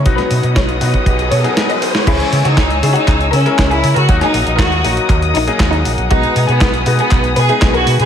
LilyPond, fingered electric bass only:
\new Staff \with { instrumentName = "Fingered electric bass" } { \clef bass \time 4/4 \key cis \dorian \tempo 4 = 119 b,,16 r16 b,16 b,16 b,,8 b,16 r16 b,,8 b,16 r4 r16 | cis,16 r16 cis16 cis16 cis,8 cis16 r16 cis,8 cis16 r16 cis,8 cis16 cis16 | dis,16 r16 ais,,16 ais,,16 dis,8 ais,,16 r16 dis,8 ais,,16 r16 dis,8 ais,,16 ais,,16 | b,,16 r16 b,16 b,16 b,,8 b,16 r16 b,,8 b,16 r16 b,,8 b,16 b,16 | }